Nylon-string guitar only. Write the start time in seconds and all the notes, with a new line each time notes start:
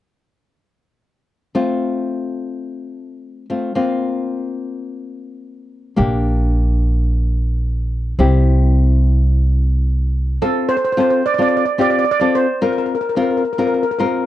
1.55 A3 C4 F4
3.50 A3 C4 F4
3.75 A#3 C4 F4
5.96 A#3 D4 G4
8.19 C4 E4 G4
10.42 C4 F4 A4
10.97 C4 F4 A4
11.38 C4 F4 A4
11.78 C4 F4 G4
12.21 C4 F4 A4
12.61 C4 F4 A#4
13.16 C4 F4 A#4
13.58 C4 F4 A#4
13.99 C4 F4 A#4